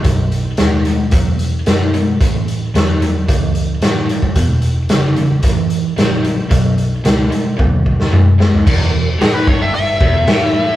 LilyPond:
<<
  \new Staff \with { instrumentName = "Lead electric guitar" } { \time 4/4 \key b \mixolydian \tempo 4 = 112 r1 | r1 | r1 | r1 |
r4 gis'16 b'16 cis''16 e''16 e''2 | }
  \new Staff \with { instrumentName = "Distorted electric guitar" } { \clef bass \time 4/4 \key b \mixolydian <b, fis>4 <b, gis>8 <b, gis>8 <b, fis>4 <b, gis>8 <b, gis>8 | <a, e>4 <a, fis>8 <a, fis>8 <a, e>4 <a, fis>8 <a, fis>8 | <e, b,>4 <e, cis>8 <e, cis>8 <a, e>4 <a, fis>8 <a, fis>8 | <b, fis>4 <b, gis>8 <b, gis>8 <b, fis>4 <b, gis>8 <b, gis>8 |
e,8 e,8 a,8 g,4 e,8 a,4 | }
  \new Staff \with { instrumentName = "Picked electric bass" } { \clef bass \time 4/4 \key b \mixolydian b,,4 dis,4 e,4 fis,4 | a,4 e,4 cis,4 a,,4 | e,,4 gis,,4 a,,4 ais,,4 | b,,4 cis,8 r8 dis,4 fis,4 |
e,,8 e,,8 a,,8 g,,4 e,,8 a,,4 | }
  \new DrumStaff \with { instrumentName = "Drums" } \drummode { \time 4/4 <hh bd>8 hh8 <hh sn>8 hh8 <hh bd>8 hh8 <hh sn>8 hh8 | <hh bd>8 hh8 <hh sn>8 hh8 <hh bd>8 hh8 <hh sn>8 hh16 bd16 | <hh bd>8 hh8 <hh sn>8 hh8 <hh bd>8 hh8 <hh sn>8 hh8 | <hh bd>8 hh8 <hh sn>8 hh8 <bd tommh>8 bd16 sn16 toml8 sn16 tomfh16 |
<cymc bd>4 <hho sn>8 bd8 hho8 bd8 <hho sn>4 | }
>>